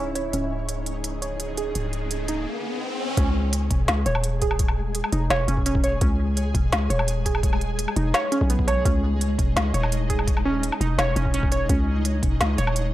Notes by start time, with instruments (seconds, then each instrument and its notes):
Already playing: 808-style bass C#1, synth drone C#3 G#3 D#4 E4, synth pluck C#4, synth texture C#4 C#5
0.15 synth pluck C#5, closed hi-hat
0.33 808-style bass C#1, synth pluck C#4, synth texture D#4, synth drone G#4, closed hi-hat, riser
0.69 closed hi-hat
0.86 closed hi-hat
1.04 closed hi-hat
1.22 synth pluck C#5, closed hi-hat
1.40 closed hi-hat
1.57 synth pluck G#4, closed hi-hat
1.75 808-style bass C#1, closed hi-hat
1.93 closed hi-hat
2.11 closed hi-hat
2.28 synth pluck D#4, closed hi-hat
3.17 808-style bass C#2, synth texture G#3 G#4, synth pluck C#4, kick, closed hi-hat
3.53 closed hi-hat
3.71 808-style bass E1, kick, closed hi-hat
3.88 808-style bass C#2, snare, closed hi-hat
4.06 808-style bass D#1, synth pluck C#5, closed hi-hat
4.15 low woodblock
4.24 closed hi-hat
4.42 synth pluck G#4, kick, closed hi-hat
4.51 low woodblock
4.59 kick, closed hi-hat
4.68 low woodblock
4.95 closed hi-hat
5.04 low woodblock
5.12 808-style bass E1, synth pluck D#4, closed hi-hat
5.30 808-style bass E1, synth pluck C#5, snare, closed hi-hat
5.48 808-style bass E1, synth pluck C#4, closed hi-hat
5.57 kick
5.66 synth pluck C#4, closed hi-hat
5.75 kick
5.84 synth pluck C#5, closed hi-hat
6.01 808-style bass C#2, synth pluck C#4, kick, closed hi-hat
6.37 closed hi-hat
6.55 808-style bass E1, kick, closed hi-hat
6.72 808-style bass C#2, snare, closed hi-hat
6.90 808-style bass D#1, synth pluck C#5, closed hi-hat
6.99 low woodblock
7.08 closed hi-hat
7.26 synth pluck G#4, kick, closed hi-hat
7.35 low woodblock
7.43 kick, closed hi-hat
7.53 low woodblock
7.61 closed hi-hat
7.79 closed hi-hat
7.88 low woodblock
7.96 808-style bass E1, synth pluck D#4, closed hi-hat
8.14 synth pluck C#5, snare, closed hi-hat
8.32 synth pluck C#4, closed hi-hat
8.41 808-style bass B1, kick
8.50 synth pluck B3, closed hi-hat
8.59 kick
8.68 synth pluck C#5, closed hi-hat, low woodblock
8.85 808-style bass C#2, synth pluck C#4, synth texture D#4, kick, closed hi-hat
9.21 closed hi-hat
9.39 808-style bass E1, kick, closed hi-hat
9.56 808-style bass C#2, snare, closed hi-hat
9.74 808-style bass D#1, synth pluck C#5, closed hi-hat
9.83 low woodblock
9.92 closed hi-hat
10.10 synth pluck G#4, kick, closed hi-hat
10.19 low woodblock
10.27 kick, closed hi-hat
10.37 low woodblock
10.46 synth pluck C#4
10.63 closed hi-hat
10.72 low woodblock
10.81 808-style bass E1, synth pluck D#4, closed hi-hat
10.98 808-style bass E1, synth pluck C#5, snare, closed hi-hat
11.16 808-style bass E1, synth pluck C#4, closed hi-hat
11.25 kick
11.34 synth pluck C#4, closed hi-hat
11.43 kick
11.52 synth pluck C#5, closed hi-hat
11.69 808-style bass C#2, synth pluck C#4, kick, closed hi-hat
12.05 closed hi-hat
12.23 808-style bass E1, kick, closed hi-hat
12.41 808-style bass C#2, snare, closed hi-hat
12.58 808-style bass D#1, synth pluck C#5, closed hi-hat
12.67 low woodblock
12.76 closed hi-hat